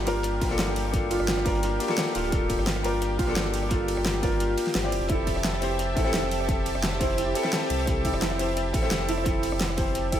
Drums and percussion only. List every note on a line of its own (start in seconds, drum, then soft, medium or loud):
0.07 closed hi-hat medium
0.07 ride medium
0.23 cross-stick soft
0.23 closed hi-hat medium
0.23 closed hi-hat loud
0.41 kick loud
0.41 snare soft
0.41 closed hi-hat medium
0.41 ride medium
0.51 snare soft
0.59 snare loud
0.59 closed hi-hat medium
0.59 closed hi-hat loud
0.76 closed hi-hat medium
0.76 ride medium
0.85 cross-stick soft
0.94 kick loud
0.94 closed hi-hat medium
1.11 closed hi-hat medium
1.11 ride medium
1.20 cross-stick medium
1.28 snare loud
1.28 closed hi-hat loud
1.28 closed hi-hat medium
1.37 cross-stick soft
1.46 kick loud
1.46 snare soft
1.46 closed hi-hat medium
1.46 ride medium
1.55 closed hi-hat soft
1.63 closed hi-hat loud
1.63 closed hi-hat medium
1.80 closed hi-hat medium
1.80 ride medium
1.89 snare soft
1.97 snare loud
1.97 closed hi-hat medium
1.97 open hi-hat medium
2.15 closed hi-hat medium
2.15 ride medium
2.24 closed hi-hat soft
2.32 kick loud
2.32 closed hi-hat medium
2.49 kick medium
2.49 closed hi-hat medium
2.49 ride medium
2.59 cross-stick medium
2.59 closed hi-hat soft
2.66 snare loud
2.66 closed hi-hat medium
2.76 cross-stick soft
2.84 closed hi-hat medium
2.84 ride medium
3.02 cross-stick soft
3.02 closed hi-hat medium
3.19 kick loud
3.19 snare soft
3.19 closed hi-hat medium
3.19 ride medium
3.29 snare soft
3.36 snare loud
3.36 closed hi-hat medium
3.54 closed hi-hat medium
3.54 ride medium
3.63 cross-stick soft
3.70 kick loud
3.70 closed hi-hat medium
3.88 closed hi-hat medium
3.88 ride medium
3.97 cross-stick medium
4.05 snare loud
4.05 closed hi-hat medium
4.15 cross-stick soft
4.23 kick loud
4.23 snare soft
4.23 closed hi-hat medium
4.23 ride medium
4.32 closed hi-hat soft
4.40 closed hi-hat medium
4.57 closed hi-hat medium
4.57 ride medium
4.67 snare soft
4.75 snare loud
4.75 closed hi-hat medium
4.75 open hi-hat medium
4.92 closed hi-hat medium
4.92 ride medium
5.01 closed hi-hat soft
5.08 kick loud
5.08 closed hi-hat medium
5.27 kick medium
5.27 closed hi-hat medium
5.27 ride medium
5.36 cross-stick medium
5.36 closed hi-hat soft
5.44 snare loud
5.44 closed hi-hat medium
5.53 cross-stick soft
5.62 closed hi-hat medium
5.62 ride medium
5.79 cross-stick soft
5.79 closed hi-hat medium
5.79 closed hi-hat loud
5.96 kick loud
5.96 snare soft
5.96 closed hi-hat medium
5.96 ride medium
6.06 snare soft
6.13 snare loud
6.13 closed hi-hat medium
6.31 closed hi-hat medium
6.31 ride medium
6.40 cross-stick soft
6.49 kick loud
6.49 closed hi-hat medium
6.66 closed hi-hat medium
6.66 ride medium
6.75 cross-stick medium
6.83 snare loud
6.83 closed hi-hat medium
6.92 cross-stick soft
7.00 kick loud
7.00 snare medium
7.00 closed hi-hat medium
7.00 ride medium
7.10 closed hi-hat soft
7.18 closed hi-hat medium
7.35 closed hi-hat medium
7.35 ride medium
7.45 snare soft
7.53 snare loud
7.53 closed hi-hat medium
7.53 open hi-hat medium
7.70 closed hi-hat medium
7.70 ride medium
7.79 closed hi-hat soft
7.87 kick loud
7.87 closed hi-hat loud
7.87 closed hi-hat medium
8.05 kick medium
8.05 closed hi-hat medium
8.05 ride medium
8.13 cross-stick medium
8.13 closed hi-hat soft
8.22 snare loud
8.22 closed hi-hat loud
8.22 closed hi-hat medium
8.31 cross-stick soft
8.39 closed hi-hat medium
8.39 ride medium
8.57 cross-stick soft
8.57 closed hi-hat loud
8.57 closed hi-hat medium
8.74 kick loud
8.74 snare soft
8.74 closed hi-hat medium
8.74 ride medium
8.83 snare soft
8.91 snare loud
8.91 closed hi-hat loud
9.09 closed hi-hat medium
9.09 ride medium
9.18 cross-stick soft
9.25 kick loud
9.25 closed hi-hat medium
9.25 closed hi-hat loud
9.43 closed hi-hat medium
9.43 ride medium
9.52 cross-stick medium
9.60 snare loud
9.60 closed hi-hat medium
9.69 cross-stick soft
9.77 kick loud
9.77 snare soft
9.77 closed hi-hat medium
9.77 ride medium
9.88 closed hi-hat soft
9.95 closed hi-hat medium
9.95 closed hi-hat loud
10.12 kick medium
10.12 closed hi-hat medium
10.12 ride medium